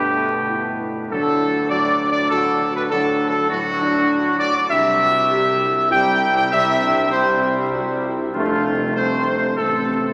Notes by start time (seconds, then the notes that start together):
Already playing: G1 B2 A3 D4 G4
0.50 E4
1.10 D2 A2 F#3 D4 A4
1.70 A2 F#3 D5
2.11 D5
2.30 A2 F#3 F#4 A4
2.75 B4
2.88 A2 D4 A4
2.93 F#3
3.30 A4
3.49 A2 F#3 E4 F#4
3.81 D4
4.39 D5
4.56 D5
4.70 C2 C3 G3 E4 E5
5.01 F#4
5.31 G4
5.90 C3 G3 E4 G5
6.37 G5
6.51 C3 G3 C4 E5
6.81 D4
7.11 C3 G3 E4 C5
7.42 G4
7.73 F#4
8.05 E4
8.33 F1 C3 A3 D4 F4
8.95 C3 A3 C4 C5
9.36 C5
9.56 A1 C3 A3 C4 A4